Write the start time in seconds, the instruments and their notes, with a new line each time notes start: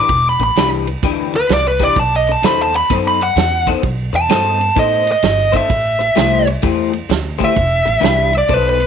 Already playing: clean electric guitar E3 D4 G4 B4, lead electric guitar D6
0.09 upright bass E1, muted clean electric guitar stroke, kick, ride
0.29 lead electric guitar B5
0.39 upright bass A1, muted clean electric guitar stroke, ride
0.43 lead electric guitar B5
0.56 upright bass C2, clean electric guitar E3 D4 G4 B4, snare, ride
0.87 muted clean electric guitar stroke, ride
1.03 upright bass D2, clean electric guitar E3 D4 G4 B4, kick, ride
1.34 lead electric guitar B4, muted clean electric guitar stroke, ride
1.49 upright bass C2, muted clean electric guitar stroke, snare, ride
1.53 lead electric guitar D5
1.68 lead electric guitar B4
1.79 clean electric guitar E3 D4 G4 B4, kick, ride
1.83 lead electric guitar D5
1.96 upright bass B1, lead electric guitar A5, muted clean electric guitar stroke, kick, ride
2.16 lead electric guitar D#5
2.27 muted clean electric guitar stroke, ride
2.32 lead electric guitar A5
2.42 upright bass D#2, clean electric guitar B3 D#4 A4 C5, lead electric guitar B5, snare, ride
2.62 lead electric guitar A5
2.74 lead electric guitar B5, muted clean electric guitar stroke, ride
2.90 upright bass F#2, clean electric guitar B3 D#4 A4 C5, kick, ride
3.08 lead electric guitar B5
3.21 lead electric guitar F#5, muted clean electric guitar stroke, ride
3.36 upright bass E2, muted clean electric guitar stroke, snare, ride
3.67 clean electric guitar B3 D#4 A4 C5, kick, ride
3.83 upright bass B1, muted clean electric guitar stroke, kick, ride
4.13 upright bass E2, lead electric guitar A5, muted clean electric guitar stroke, ride
4.29 upright bass G2, clean electric guitar B3 D#4 A4 C5, snare, ride
4.60 muted clean electric guitar stroke, ride
4.76 upright bass A2, clean electric guitar B3 D#4 A4 C5, lead electric guitar D#5, kick, ride
5.06 muted clean electric guitar stroke, ride
5.12 lead electric guitar D#5
5.22 upright bass G1, muted clean electric guitar stroke, snare, ride
5.52 clean electric guitar B3 D#4 A4 C5, kick, ride
5.57 lead electric guitar E5
5.69 upright bass A1, muted clean electric guitar stroke, kick, ride
5.99 muted clean electric guitar stroke, ride
6.16 upright bass C2, clean electric guitar A3 E4 G4 C5, snare, ride
6.47 muted clean electric guitar stroke, ride
6.62 upright bass E2, clean electric guitar A3 E4 G4 C5, kick, ride
6.93 muted clean electric guitar stroke, ride
7.09 upright bass D2, muted clean electric guitar stroke, snare, ride
7.39 clean electric guitar A3 E4 G4 C5, kick, ride
7.44 lead electric guitar E5
7.55 upright bass E1, muted clean electric guitar stroke, kick, ride
7.85 upright bass A1, muted clean electric guitar stroke, ride
8.00 upright bass C2, clean electric guitar E3 D4 G4 B4, ride
8.04 snare
8.32 muted clean electric guitar stroke, ride
8.38 lead electric guitar D5
8.49 upright bass B1, clean electric guitar B3 D#4 A4 C5, kick, ride
8.54 lead electric guitar B4
8.69 lead electric guitar B4
8.79 muted clean electric guitar stroke, ride